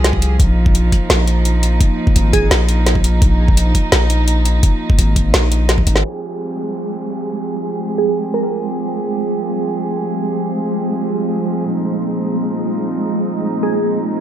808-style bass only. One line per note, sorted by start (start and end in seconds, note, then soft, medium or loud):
0.00 0.38 C2 medium
0.40 0.91 A#1 loud
1.10 1.79 A#1 medium
2.16 2.50 G#1 medium
2.51 3.20 A#1 medium
3.22 3.73 A#1 loud
3.92 4.62 A#1 medium
4.98 5.32 G#1 loud
5.34 5.85 A#1 medium
5.87 6.03 G#1 medium